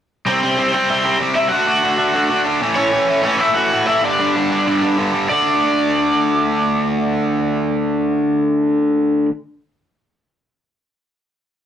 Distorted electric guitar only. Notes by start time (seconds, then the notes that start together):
0.26 C3 G3 C4
0.43 C3 G3 C4
0.58 C3 G3 C4
0.74 C3 G3 C4
0.90 C3 G3 C4
1.05 C3 G3 C4
1.20 C3 G3 C4
1.36 C3 G3 C4
1.51 D3 A3 D4
1.67 D3 A3 D4
1.83 D3 A3 D4
1.98 D3 A3 D4
2.15 D3 A3 D4
2.30 D3 A3 D4
2.46 D3 A3 D4
2.62 A2 E3 A3
2.77 A2 E3 A3
2.93 A2 E3 A3
3.09 A2 E3 A3
3.25 A2 E3 A3
3.40 A2 E3 A3
3.56 A2 E3 A3
3.72 A2 E3 A3
3.87 A2 E3 A3
4.02 G2 D3 G3
4.19 G2 D3 G3
4.35 G2 D3 G3
4.51 G2 D3 G3
4.67 G2 D3 G3
4.82 G2 D3 G3
4.98 G2 D3 G3
5.13 G2 D3 G3
5.29 D3 A3
5.33 D4